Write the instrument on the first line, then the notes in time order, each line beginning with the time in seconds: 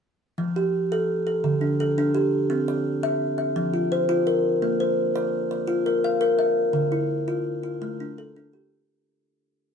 kalimba
0.38 F3
0.56 G4
0.92 A4
1.27 A4
1.44 D3
1.61 D4
1.80 A4
1.98 D4
2.15 G4
2.50 C4
2.68 D5
3.03 E5
3.38 E5
3.56 F3
3.74 F4
3.92 C5
4.09 F4
4.27 A#4
4.62 A#3
4.80 C5
5.16 D5
5.51 D5
5.68 F4
5.86 A#4
6.04 F5
6.21 A#4
6.39 E5
6.73 D3
6.92 E4
7.28 F4
7.63 F4
7.82 A3
8.00 D4
8.18 A4
8.36 D4
8.53 G4